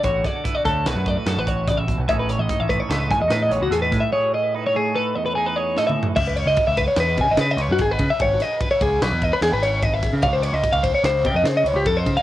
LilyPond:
<<
  \new Staff \with { instrumentName = "Clean electric guitar" } { \time 5/4 \key cis \minor \tempo 4 = 147 cis''8 d''8 b'16 d''16 a'8 b'8 d''16 b'16 a'16 b'16 cis''8 d''16 e''8 r16 | e''16 b'16 cis''16 dis''8 e''16 b'16 cis''16 b'8 gis''16 dis''16 b'16 dis''16 cis''16 fis'16 gis'16 b'8 e''16 | cis''8 dis''8 b'16 cis''16 gis'8 b'8 dis''16 b'16 gis'16 b'16 cis''8 dis''16 e''8 r16 | e''16 b'16 cis''16 dis''8 e''16 b'16 cis''16 b'8 gis''16 dis''16 b'16 dis''16 cis''16 fis'16 gis'16 b'8 e''16 |
cis''8 dis''8 b'16 cis''16 gis'8 b'8 dis''16 b'16 gis'16 b'16 cis''8 dis''16 e''8 r16 | eis''16 bis'16 cis''16 dis''8 eis''16 bis'16 cis''16 bis'8 g''16 dis''16 bis'16 dis''16 cis''16 g'16 a'16 bis'8 eis''16 | }
  \new Staff \with { instrumentName = "Clean electric guitar" } { \time 5/4 \key cis \minor << { <b fis'>4 e'16 fis'8. fis'4 fis'8 fis'4. | <a cis' dis' gis'>4 dis'4 a'4 dis'8 gis'8 a'4 | gis'4 dis'4 a'4 dis'8 gis'8 a'4 | r1 r4 |
r1 r4 | r1 r4 | } \\ { d4. a4 a,4. cis8 b,8 | a,4. a4 e,4. a,4 | a,4. a4 e,4. a,4 | r1 r4 |
r1 r4 | r1 r4 | } >> }
  \new Staff \with { instrumentName = "Picked electric bass" } { \clef bass \time 5/4 \key cis \minor a,,8 r4 d,8 b,,16 fis,8 r16 fis,16 a,,4. b,,16 | a,,8. a,,16 r16 a,,8 r16 cis,8 a,16 e,16 a,8 a,,16 cis,16 e,8 a,16 r16 | r1 r4 | cis,8. cis,16 r16 cis,8 r16 e,8 cis16 gis,,16 cis8 cis,16 fis,16 gis,,8 cis16 r16 |
gis,,8 r4 cis,8 b,,16 e,8 r16 e,16 gis,,4. cis16 | cis,8. cis,16 r16 cis,8 r16 cis,8 cis16 eis,16 cis8 cis,16 cis,16 eis,8 cis16 r16 | }
  \new DrumStaff \with { instrumentName = "Drums" } \drummode { \time 5/4 <hh bd>8 <hh bd sn>8 <hh bd>8 <hh bd>8 <hh sn>8 <hh bd>8 <hh sn>8 <hh bd>8 <hh bd sn>8 <hh bd>8 | <hh bd>8 hh8 <hh bd>8 <hh bd>8 <hh sn>8 <hh bd sn>8 <hh sn>8 hh8 hh8 <hh bd sn>8 | r4 r4 r4 r4 \tuplet 3/2 { sn8 toml8 tomfh8 } | <cymc bd>8 cymr8 <bd cymr>8 <bd cymr sn>8 <cymr sn>8 <bd cymr>8 <cymr sn>8 <cymr sn>8 <bd cymr sn>8 <bd cymr>8 |
<bd cymr>8 <cymr sn>8 <bd cymr>8 <bd cymr>8 <cymr sn>8 <bd cymr>8 <cymr sn>8 <cymr sn>8 <bd cymr>8 <bd cymr sn>8 | <bd cymr>8 cymr8 <bd cymr sn>8 <bd cymr>8 <cymr sn>8 <bd cymr>8 <cymr sn>8 cymr8 <bd cymr>8 <bd cymr>8 | }
>>